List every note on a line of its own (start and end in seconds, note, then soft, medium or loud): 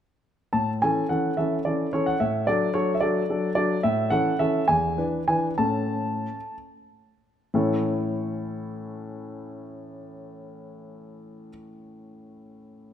0.53 0.81 A2 soft
0.53 0.70 A5 medium
0.82 1.03 E3 soft
0.82 1.03 C#4 soft
0.82 1.03 A4 soft
0.82 1.07 G#5 medium
1.09 1.30 E3 soft
1.09 1.30 C#4 soft
1.09 1.30 A4 soft
1.09 1.37 F#5 medium
1.37 1.58 E3 soft
1.37 1.58 C#4 soft
1.37 1.58 A4 soft
1.37 1.54 E5 medium
1.65 1.86 E3 soft
1.65 1.86 C#4 soft
1.65 1.86 A4 soft
1.65 1.92 D5 medium
1.93 2.13 E3 soft
1.93 2.13 C#4 soft
1.93 2.14 A4 soft
1.93 2.06 C#5 medium
2.06 2.20 F#5 medium
2.20 2.47 A2 soft
2.20 2.45 E5 medium
2.47 2.67 F#3 soft
2.47 2.67 D4 soft
2.47 2.68 A4 soft
2.47 2.74 D5 medium
2.74 2.94 F#3 soft
2.74 2.94 D4 soft
2.74 2.94 A4 soft
2.74 2.92 C#5 medium
2.94 3.01 E5 medium
3.01 3.21 F#3 soft
3.01 3.21 D4 soft
3.01 3.22 A4 soft
3.01 3.51 D5 medium
3.30 3.49 F#3 soft
3.30 3.49 D4 soft
3.30 3.49 A4 soft
3.55 3.76 F#3 soft
3.55 3.76 D4 soft
3.55 3.76 A4 soft
3.55 3.83 D5 medium
3.83 4.10 A2 medium
3.83 4.11 E5 medium
4.10 4.31 E3 soft
4.10 4.31 C#4 soft
4.10 4.32 A4 soft
4.10 4.39 F#5 medium
4.39 4.60 E3 soft
4.39 4.60 C#4 soft
4.39 4.61 A4 soft
4.39 4.68 E5 medium
4.68 4.97 E2 soft
4.68 5.04 G#5 medium
4.98 5.19 E3 soft
4.98 5.20 D4 soft
4.98 5.20 B4 soft
5.28 5.50 E3 soft
5.28 5.51 D4 soft
5.28 5.51 B4 soft
5.28 5.46 G#5 medium
5.58 6.26 A2 soft
5.58 6.35 C#4 soft
5.58 6.35 A4 soft
5.58 6.55 A5 medium
7.54 11.48 A2 soft
7.54 11.48 E3 soft
7.54 11.48 C#4 soft
7.54 11.48 E4 soft
7.54 11.49 A4 soft
7.54 11.49 C#5 soft